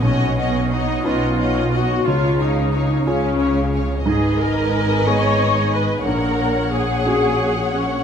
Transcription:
X:1
M:6/8
L:1/8
Q:3/8=60
K:F#
V:1 name="Violin section"
f f f f f f | e e e e e e | g6 | f6 |]
V:2 name="Violin section"
[cd] [cd] [cd] [cd] [cd] [cd] | c c c c c c | [Bd]6 | [cf]6 |]
V:3 name="Viola section"
C2 D E2 F | E D2 C2 z | G A2 c2 B | A2 G3 C |]
V:4 name="Grand piano"
B,,,3 [CDB]3 | C,,3 [CEG]3 | G,,3 [B,DG]3 | A,,,3 [CFG]3 |]
V:5 name="Cello section" clef=bass
B,,3 B,,3 | C,3 C,3 | G,,6 | A,,6 |]
V:6 name="Double bass section" clef=bass
B,,,3 B,,,3 | C,,3 C,,3 | G,,,6 | A,,,6 |]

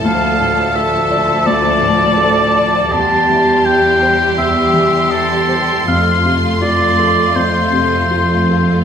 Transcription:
X:1
M:4/4
L:1/8
Q:1/4=82
K:F
V:1 name="Violin section"
a8 | c'8- | c'8 |]
V:2 name="Oboe"
f2 e2 d4 | a2 g2 e2 A2 | f z d2 c4 |]
V:3 name="Violin section"
A8 | G8 | F8 |]
V:4 name="Grand piano"
D,, A,, A d D,, A,, A d | E,, E, G c E,, E, G c | F,, C, F A F,, C, F A |]
V:5 name="Viola section" clef=bass
F,8 | G,8 | A,8 |]
V:6 name="Cello section" clef=bass
D,,8 | E,,8 | F,,8 |]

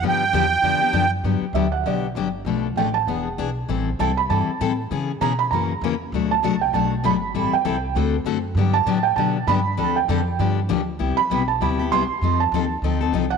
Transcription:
X:1
M:4/4
L:1/8
Q:"Swing" 1/4=197
K:Gmix
V:1 name="Felt piano"
z8 | [K:G] z2 e f d2 z2 | z2 g a f2 z2 | z2 a b a2 z2 |
z2 _b =b ^a2 z2 | z a2 g a2 b2- | b g3 z4 | z a2 g a2 b2- |
b g3 z4 | [K:Flyd] z b2 a b2 c'2- | c' a3 z3 ^f |]
V:2 name="Accordion"
g6- g z | [K:G] z8 | z8 | z8 |
z8 | z8 | z8 | z8 |
z8 | [K:Flyd] z8 | z8 |]
V:3 name="Steel-string acoustic guitar"
[D,F,B,DG] z [D,F,B,DG] z [D,F,B,DG] [B,DG] [D,F,B,DG] z | [K:G] [D,F,B,DG] z [D,F,B,DG] z [D,F,B,DG] z [D,F,B,DG] z | [B,,=F,A,DA] z [B,,F,A,DA] z [E,B,D^G] z [E,B,DG] z | [E,G,CEA] z [E,G,CEA] z [E,G,CEA] z [E,G,CEA] z |
[^C,E,B,^C^G] z [C,E,B,CG] z [C,E,^A,CF] z [C,E,A,CF] z | [B,,F,A,DF] z [B,,F,A,DF] z [B,,F,A,DF] z [B,,F,A,DF] z | [E,G,CEA] z [E,G,CEA] z [D,A,CFA] z [D,A,CFA] z | [D,F,B,DG] z [D,F,B,DG] z [D,F,B,DG] z [D,F,B,DG] z |
[D,=F,CDA] z [D,F,CDA] z [D,F,B,DG] z [D,F,B,DG] z | [K:Flyd] [C,G,B,EG] z [C,G,B,EG] z [C,G,B,EG] [B,EG] [C,G,B,EG] z | [F,C_EA] z [F,CEA] z [F,CEA] [CEA] [F,CEA] z |]
V:4 name="Upright bass" clef=bass
G,,2 E,,2 F,, z ^F,,2 | [K:G] G,, z D,,2 B,,,2 G,,,2 | B,,,2 A,,,2 E,,,2 B,,,2 | A,,,2 C,,2 G,, z A,,2 |
^C,2 B,,2 F,,2 E,,2 | D,,2 C,,2 B,,,2 G,,,2 | A,,, z C,,2 D,,2 F,,2 | G,,2 A,,2 B,,2 G,,2 |
D,,2 =F,,2 G,,2 D,,2 | [K:Flyd] C,, z B,,,2 D,,2 C,, z | F,,2 _E,,2 D,,2 C,,2 |]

